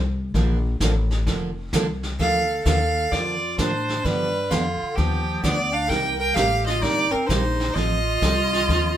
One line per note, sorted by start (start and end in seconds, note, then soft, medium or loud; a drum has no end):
0.00 0.33 C2 loud
0.34 0.79 A#1 medium
0.34 0.57 D3 medium
0.34 0.57 F3 medium
0.34 0.57 A#3 medium
0.34 0.58 D4 medium
0.34 0.58 A4 medium
0.34 brush sweep medium
0.34 kick soft
0.34 snare medium
0.80 1.26 A1 loud
0.80 0.93 D3 medium
0.80 0.93 F3 medium
0.80 0.93 A#3 medium
0.80 0.93 D4 medium
0.80 0.93 A4 medium
0.80 kick soft
0.80 snare medium
0.80 hi-hat pedal medium
1.11 snare soft
1.26 1.72 F1 medium
1.26 1.49 D3 soft
1.26 1.50 F3 medium
1.26 1.50 A#3 medium
1.26 1.50 D4 medium
1.26 1.50 A4 medium
1.26 brush sweep medium
1.26 kick soft
1.26 snare medium
1.73 2.18 C2 loud
1.73 1.85 D3 medium
1.73 1.85 F3 medium
1.73 1.86 A#3 medium
1.73 1.86 D4 medium
1.73 1.86 A4 medium
1.73 kick soft
1.73 snare medium
1.73 hi-hat pedal medium
2.03 snare soft
2.19 2.64 D2 medium
2.19 2.42 D3 medium
2.19 2.42 F3 medium
2.19 2.42 A#3 medium
2.19 2.42 D4 medium
2.19 2.42 A4 medium
2.19 2.63 A4 medium
2.19 2.63 F5 loud
2.19 brush sweep soft
2.19 kick soft
2.19 snare soft
2.65 3.11 D#2 medium
2.65 2.78 D3 medium
2.65 2.78 F3 medium
2.65 2.78 A#3 medium
2.65 2.78 D4 medium
2.65 3.14 A4 medium
2.65 2.78 A4 medium
2.65 3.13 F5 loud
2.65 kick soft
2.65 snare medium
2.65 hi-hat pedal medium
3.12 3.57 F2 medium
3.12 3.34 D3 soft
3.12 3.35 F3 soft
3.12 3.35 A#3 medium
3.12 3.35 D4 medium
3.12 3.58 F4 medium
3.12 3.35 A4 medium
3.12 3.58 D5 loud
3.12 brush sweep medium
3.12 kick soft
3.12 snare soft
3.58 4.03 A2 medium
3.58 3.71 D3 medium
3.58 3.71 F3 medium
3.58 3.71 A#3 medium
3.58 4.05 D4 medium
3.58 3.71 D4 medium
3.58 3.71 A4 medium
3.58 4.06 C5 medium
3.58 kick soft
3.58 snare medium
3.58 hi-hat pedal medium
3.89 snare soft
4.04 4.50 G2 medium
4.04 4.27 D3 medium
4.04 4.27 F3 medium
4.04 4.52 G3 medium
4.04 4.27 B3 medium
4.04 4.27 D4 medium
4.04 4.28 G4 medium
4.04 4.52 B4 loud
4.04 brush sweep medium
4.04 kick soft
4.04 snare soft
4.50 4.79 F2 loud
4.50 4.98 D3 medium
4.50 4.63 D3 medium
4.50 4.63 F3 medium
4.50 4.63 B3 medium
4.50 4.63 D4 medium
4.50 4.97 F4 medium
4.50 4.63 G4 medium
4.50 kick soft
4.50 snare medium
4.50 hi-hat pedal medium
4.82 muted upright bass stroke soft
4.95 5.43 D#2 medium
4.95 5.20 D3 medium
4.95 5.43 F3 medium
4.95 5.20 F3 medium
4.95 5.20 B3 soft
4.95 5.20 D4 medium
4.95 5.43 G4 loud
4.95 5.20 G4 medium
4.95 brush sweep soft
4.95 kick soft
4.95 snare soft
5.43 5.89 D2 loud
5.43 5.56 D3 medium
5.43 5.56 F3 medium
5.43 5.74 B3 medium
5.43 5.56 B3 medium
5.43 5.56 D4 medium
5.43 5.56 G4 medium
5.43 5.75 D5 loud
5.43 kick soft
5.43 snare medium
5.43 hi-hat pedal medium
5.73 5.91 D4 medium
5.73 5.91 F5 loud
5.89 6.35 C2 medium
5.89 6.12 C3 medium
5.89 6.12 G3 medium
5.89 6.13 A#3 medium
5.89 6.13 D#4 medium
5.89 6.13 G4 medium
5.89 6.20 A#4 loud
5.89 6.18 G5 loud
5.89 brush sweep soft
5.89 kick soft
5.89 snare soft
6.19 6.37 A#4 medium
6.19 6.36 G5 loud
6.35 6.82 A1 loud
6.35 6.48 C3 medium
6.35 6.49 G3 medium
6.35 6.49 A#3 medium
6.35 6.49 D#4 medium
6.35 6.65 G4 medium
6.35 6.49 G4 medium
6.35 6.66 F5 loud
6.35 kick soft
6.35 snare medium
6.35 hi-hat pedal medium
6.66 6.83 F4 medium
6.66 6.84 D#5 loud
6.66 snare soft
6.81 7.11 G1 medium
6.81 7.05 C3 medium
6.81 7.05 G3 soft
6.81 7.06 A#3 medium
6.81 7.13 D#4 medium
6.81 7.06 D#4 soft
6.81 7.06 G4 medium
6.81 7.13 D5 loud
6.81 brush sweep soft
6.81 kick soft
6.81 snare soft
7.11 7.28 C4 medium
7.11 7.28 A#4 medium
7.11 muted upright bass stroke soft
7.27 7.74 A#1 medium
7.27 7.41 C3 medium
7.27 7.42 G3 medium
7.27 7.42 A#3 medium
7.27 7.77 D#4 medium
7.27 7.42 D#4 medium
7.27 7.76 C5 medium
7.27 kick soft
7.27 snare medium
7.27 hi-hat pedal medium
7.31 7.42 G4 medium
7.60 snare soft
7.74 8.21 A1 medium
7.74 7.98 F3 medium
7.74 7.98 C4 medium
7.74 7.99 D#4 medium
7.74 8.97 F4 loud
7.74 7.99 A4 medium
7.74 8.97 D#5 loud
7.74 brush sweep soft
7.74 kick soft
7.74 snare soft
8.22 8.67 C2 loud
8.22 8.34 F3 medium
8.22 8.34 C4 medium
8.22 8.34 D#4 medium
8.22 8.35 A4 medium
8.22 kick soft
8.22 snare medium
8.22 hi-hat pedal medium
8.53 snare soft
8.68 8.97 D#2 medium
8.68 8.91 F3 medium
8.68 8.91 C4 soft
8.68 8.91 D#4 medium
8.68 8.91 A4 medium
8.68 brush sweep soft
8.68 kick soft
8.68 snare soft